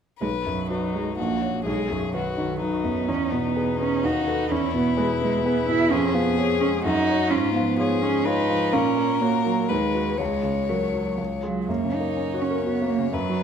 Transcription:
0.20 B1 G#3 B4
0.45 F#2 F#3
0.70 D#4 F#4 B4
0.94 G#3 D#4
1.17 A#1 A#3 F#4
1.42 F#4 C#5
1.65 B1 G#3 G#4
1.90 F#2 F#3
2.14 D#3 F#4 B4
2.37 D#3 D#4
2.60 F#3 D#4 F#4 B4
2.84 F#2 B3
3.08 E2 C#4
3.31 B2 B3
3.56 G#4 B4
3.80 B3 C#4
4.04 D#2 D#4 F#4
4.27 A4 B4
4.51 E2 C#4 E4
4.74 B2 B3
4.97 G#3 G#4 B4
5.21 G#3 B3
5.45 B3 G#4 B4
5.68 B2 E4
5.91 F2 C#4 G#4
6.14 F3 B3
6.38 G#4 C#5
6.60 G#3 C#4
6.84 F#2 D#4 F#4
7.09 F#4 C#5
7.30 G#2 C#4 F4
7.55 F3 B3
7.79 F4 G#4 C#5
8.01 G#3 C#4
8.24 D#4 F4 B4 C#5
8.50 F3
8.72 A#2 C#4 A#4
8.97 A#3
9.21 A#3 F#4 C#5
9.46 F#3
9.69 D#2 G#3 B4
9.95 F#4 B4
10.18 C#2 G#3 C#5
10.43 C#3
10.69 F#3 F#4 A#4
10.93 F#3
11.18 C#2
11.43 F#3 F4 G#4
11.68 F#2 A#3 C#5
11.85 C#3
11.94 D#4
12.00 A#3
12.17 C#4
12.34 F#4
12.42 C#4
12.51 A#4
12.66 B3 F#4
12.82 A#3
12.90 A#3
12.98 C#3
13.13 F#2 F#3 B4
13.29 F#3

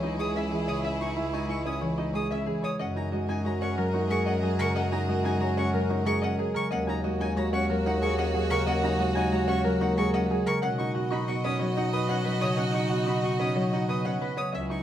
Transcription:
Already playing: C#2 E3 G#3 E4 G#4 C#5 E5 G#5 C#6
0.02 C#4 D#4 D#5
0.19 G#3 G#4 C#5 D#6
0.35 C#4 E5
0.51 E3 G#4
0.67 C#3 C#5 D#6
0.84 C#4 E5
1.01 D#4 C#6
1.17 G#3 E4 E5
1.33 D#4 G#5 C#6
1.49 G#3 E4 D#5 C#6
1.66 C#4 G#5 D#6
1.81 E3 C#5
1.98 C#4 D#4 D#5
2.13 G#3 G#4 C#5 D#6
2.30 C#4 E5
2.46 E3 G#4
2.62 C#3 C#5 D#6
2.79 F#2 C#4 F#4 G#4 A#4 D#5 F#5
2.96 D#4 G#5 A#5
3.12 G#3 F#4 D#5
3.29 C#4 D#4 G#5
3.45 G#3 F#4 C#5 A#5
3.61 C#4 F#5 C#6
3.77 F#3 A#4
3.93 A#3 D#4 C#5
4.09 G#3 G#4 A#4 C#6
4.26 C#4 D#5 F#5
4.42 F#3 G#4
4.59 C#3 A#4 C#6
4.75 C#4 D#5 F#5
4.92 D#4 G#5 A#5
5.08 G#3 F#4 D#5
5.24 C#4 D#4 G#5
5.40 G#3 F#4 C#5 A#5
5.57 C#4 F#5 C#6
5.73 F#3 A#4
5.90 A#3 D#4 C#5
6.05 G#3 G#4 A#4 C#6
6.22 C#4 D#5 F#5
6.39 F#3 G#4
6.54 C#3 A#4 C#6
6.70 D#2 A#3 C#4 F#4 C#5 D#5 F#5
6.87 D#4 G#5 A#5
7.04 G#3 F#4 D#5
7.20 C#4 D#4 G#5
7.36 G#3 F#4 C#5 A#5
7.53 C#4 F#5 C#6
7.70 F#3 A#4
7.86 A#3 D#4 C#5 F#5
8.02 G#3 G#4 A#4 C#6
8.18 C#4 D#5 F#5
8.34 F#3 G#4
8.50 C#3 A#4 C#6
8.66 A#3 C#4 D#5 F#5
8.83 D#4 G#5 A#5
8.99 G#3 F#4 D#5
9.15 C#4 D#4 G#5
9.32 G#3 F#4 C#5 A#5
9.48 C#4 F#5 C#6
9.64 F#3 A#4
9.81 A#3 D#4 C#5 F#5
9.97 G#3 G#4 A#4 C#6
10.14 C#4 D#5 F#5
10.30 F#3 G#4
10.46 C#3 A#4 C#6
10.62 B2 C#4 D#4 F#4 D#5 F#5
10.78 D#4 C#6
10.94 B3 F#4 F#5
11.10 D#4 B5 C#6
11.28 B3 F#4 D#5 C#6
11.44 C#4 B5 D#6
11.59 F#3 C#5
11.77 C#4 D#4 D#5 F#5
11.93 B3 B4 C#5 D#6
12.09 C#4 F#5
12.24 F#3 B4
12.41 C#3 C#5 D#6
12.57 C#4 F#5
12.74 D#4 C#6
12.90 B3 F#4 F#5
13.06 D#4 B5 C#6
13.22 B3 F#4 D#5 C#6
13.39 C#4 B5 D#6
13.55 F#3 C#5
13.72 C#4 D#4 D#5 F#5
13.88 B3 B4 C#5 D#6
14.05 C#4 F#5
14.21 F#3 B4
14.37 C#3 C#5 D#6
14.52 C#2 C#4 E4 G#4 E5
14.70 D#4 C#6

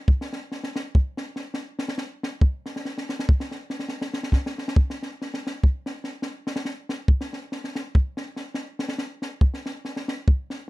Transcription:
0.08 kick
0.21 snare
0.33 snare
0.52 snare
0.64 snare
0.76 snare
0.95 kick
1.17 snare
1.36 snare
1.54 snare
1.79 snare
1.88 snare
1.98 snare
2.23 snare
2.41 kick
2.66 snare
2.76 snare
2.85 snare
2.98 snare
3.09 snare
3.19 snare
3.29 kick
3.40 snare
3.51 snare
3.70 snare
3.79 snare
3.89 snare
4.01 snare
4.13 snare
4.23 snare
4.32 kick, snare
4.46 snare
4.58 snare
4.68 snare
4.76 kick
4.90 snare
5.03 snare
5.22 snare
5.34 snare
5.47 snare
5.64 kick
5.86 snare
6.04 snare
6.22 snare
6.47 snare
6.56 snare
6.65 snare
6.89 snare
7.08 kick
7.21 snare
7.33 snare
7.52 snare
7.64 snare
7.75 snare
7.95 kick
8.17 snare
8.36 snare
8.54 snare
8.79 snare
8.88 snare
8.98 snare
9.22 snare
9.41 kick
9.54 snare
9.66 snare
9.85 snare
9.96 snare
10.08 snare
10.28 kick
10.50 snare

